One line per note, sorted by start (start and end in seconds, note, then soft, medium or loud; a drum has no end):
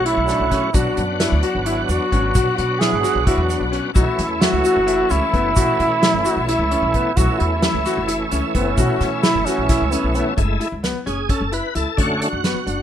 0.00 0.12 B1 medium
0.00 0.70 F#3 medium
0.00 0.70 A3 medium
0.00 0.71 C#4 medium
0.00 0.71 F#4 medium
0.06 0.18 E4 medium
0.06 0.77 E4 loud
0.06 closed hi-hat medium
0.17 0.35 B1 medium
0.28 0.40 D4 medium
0.28 snare soft
0.28 closed hi-hat medium
0.28 shaker soft
0.40 0.57 B1 medium
0.51 0.63 C#4 medium
0.51 kick medium
0.51 snare soft
0.51 closed hi-hat medium
0.73 0.83 B1 medium
0.73 3.91 F#3 medium
0.73 3.91 B3 medium
0.73 3.91 D4 medium
0.73 1.62 D4 medium
0.73 0.99 F#4 medium
0.73 3.92 F#4 medium
0.73 kick loud
0.73 closed hi-hat medium
0.73 shaker medium
0.97 1.24 F#2 medium
0.97 closed hi-hat medium
1.20 1.32 E4 medium
1.20 snare medium
1.20 closed hi-hat medium
1.32 1.41 D2 medium
1.43 1.55 F#4 medium
1.43 closed hi-hat medium
1.55 1.81 G#1 medium
1.66 1.79 E4 medium
1.66 closed hi-hat medium
1.89 1.98 E2 medium
1.89 2.01 D4 medium
1.89 2.54 F#4 medium
1.89 closed hi-hat medium
1.89 shaker soft
2.12 2.30 G#1 medium
2.12 2.25 C#4 medium
2.12 kick medium
2.12 closed hi-hat medium
2.35 2.44 B2 loud
2.35 2.59 F#4 medium
2.35 kick loud
2.35 closed hi-hat medium
2.35 shaker medium
2.57 2.85 B2 medium
2.57 2.81 F#4 medium
2.57 closed hi-hat medium
2.79 2.93 E4 medium
2.79 3.26 G#4 loud
2.79 snare medium
2.79 closed hi-hat medium
2.93 3.01 G#1 medium
3.03 3.16 F#4 medium
3.03 snare soft
3.03 closed hi-hat medium
3.03 shaker soft
3.15 3.33 B1 medium
3.27 3.39 E4 medium
3.27 3.69 F#4 medium
3.27 kick loud
3.27 closed hi-hat medium
3.38 3.55 E2 medium
3.49 3.62 D4 medium
3.49 closed hi-hat medium
3.49 shaker soft
3.60 3.78 B1 medium
3.72 3.84 C#4 medium
3.72 closed hi-hat medium
3.94 4.05 B1 medium
3.94 7.12 E3 medium
3.94 7.12 A3 medium
3.94 7.12 C#4 medium
3.94 7.13 E4 medium
3.94 4.42 E4 medium
3.94 4.20 F#4 medium
3.94 kick loud
3.94 closed hi-hat medium
3.94 shaker medium
4.19 4.45 E2 medium
4.19 snare soft
4.19 closed hi-hat medium
4.41 4.53 E4 medium
4.41 5.13 F#4 loud
4.41 snare loud
4.41 closed hi-hat medium
4.53 4.62 C#2 medium
4.64 4.76 F#4 medium
4.64 closed hi-hat medium
4.64 shaker soft
4.76 5.02 F#1 medium
4.87 4.99 E4 medium
4.87 closed hi-hat medium
5.10 5.19 C#2 medium
5.10 5.22 C#4 medium
5.10 6.47 E4 loud
5.10 closed hi-hat medium
5.10 shaker soft
5.33 5.51 F#1 medium
5.33 5.45 B3 medium
5.33 kick medium
5.33 closed hi-hat medium
5.56 5.65 B2 medium
5.56 5.81 F#4 medium
5.56 kick loud
5.56 closed hi-hat medium
5.56 shaker medium
5.80 6.06 B2 medium
5.80 closed hi-hat medium
6.02 6.14 E4 medium
6.02 snare loud
6.02 closed hi-hat medium
6.14 6.23 F#1 medium
6.25 6.37 F#4 medium
6.25 closed hi-hat medium
6.25 shaker medium
6.37 6.54 B1 medium
6.48 7.18 E4 loud
6.48 6.61 E4 medium
6.48 snare soft
6.48 closed hi-hat medium
6.59 6.77 C#2 medium
6.71 6.83 C#4 medium
6.71 closed hi-hat medium
6.82 7.00 B1 medium
6.94 7.07 B3 medium
6.94 kick medium
6.94 closed hi-hat medium
7.16 7.26 B1 loud
7.16 10.33 E3 medium
7.16 10.34 A3 medium
7.16 10.34 C#4 medium
7.16 10.34 E4 medium
7.16 7.40 F#4 medium
7.16 7.42 F#4 medium
7.16 kick medium
7.16 closed hi-hat medium
7.16 shaker soft
7.38 7.66 E2 loud
7.38 8.27 E4 medium
7.38 closed hi-hat medium
7.62 7.75 E4 medium
7.62 snare loud
7.62 closed hi-hat medium
7.74 7.83 C#2 medium
7.86 7.98 F#4 medium
7.86 snare soft
7.86 closed hi-hat medium
7.86 shaker soft
7.97 8.23 F#1 medium
8.08 8.20 E4 medium
8.08 closed hi-hat medium
8.31 8.40 C#2 medium
8.31 8.44 C#4 medium
8.31 closed hi-hat medium
8.31 shaker soft
8.55 8.72 F#1 medium
8.55 8.67 B3 medium
8.55 9.20 C#4 medium
8.55 kick medium
8.55 closed hi-hat medium
8.78 8.86 B2 loud
8.78 9.02 F#4 medium
8.78 kick loud
8.78 closed hi-hat medium
8.78 shaker medium
9.01 9.27 B2 medium
9.01 snare soft
9.01 closed hi-hat medium
9.23 9.47 E4 loud
9.23 9.36 E4 medium
9.23 snare loud
9.23 closed hi-hat medium
9.23 shaker soft
9.35 9.43 F#1 medium
9.46 9.92 C#4 medium
9.46 9.59 F#4 medium
9.46 snare soft
9.46 closed hi-hat medium
9.46 shaker soft
9.58 9.75 B1 medium
9.69 9.82 E4 medium
9.69 kick loud
9.69 snare soft
9.69 closed hi-hat medium
9.69 shaker soft
9.81 9.98 C#2 medium
9.91 10.17 B3 medium
9.91 10.05 C#4 medium
9.91 closed hi-hat medium
9.91 shaker soft
10.04 10.21 B1 medium
10.14 10.28 B3 medium
10.14 10.38 C#4 medium
10.14 closed hi-hat medium
10.14 shaker soft
10.37 10.55 F#1 medium
10.37 10.68 G#3 soft
10.37 10.68 A3 soft
10.37 10.68 E4 medium
10.37 kick loud
10.37 closed hi-hat medium
10.60 10.73 E4 medium
10.60 closed hi-hat medium
10.72 10.90 C#2 medium
10.83 10.96 B3 medium
10.83 snare medium
10.83 closed hi-hat medium
11.06 11.24 F#1 medium
11.06 11.19 C#4 medium
11.06 11.30 G#4 medium
11.06 closed hi-hat medium
11.29 11.42 C#4 medium
11.29 11.53 A4 medium
11.29 kick medium
11.29 closed hi-hat medium
11.41 11.58 F#1 medium
11.52 11.65 E4 medium
11.52 11.74 B4 medium
11.52 closed hi-hat medium
11.75 11.84 C#2 medium
11.75 11.87 E4 medium
11.75 11.97 A4 medium
11.75 closed hi-hat medium
11.97 12.16 F#1 medium
11.97 12.28 D3 soft
11.97 12.28 A3 soft
11.97 12.29 C#4 medium
11.97 12.20 F#4 medium
11.97 kick medium
11.97 closed hi-hat medium
12.21 12.33 D4 medium
12.21 12.82 F#4 medium
12.21 closed hi-hat medium
12.33 12.50 F#1 medium
12.44 12.56 B3 medium
12.44 snare medium
12.44 closed hi-hat medium
12.66 12.82 F#1 medium
12.66 12.79 D4 medium
12.66 closed hi-hat medium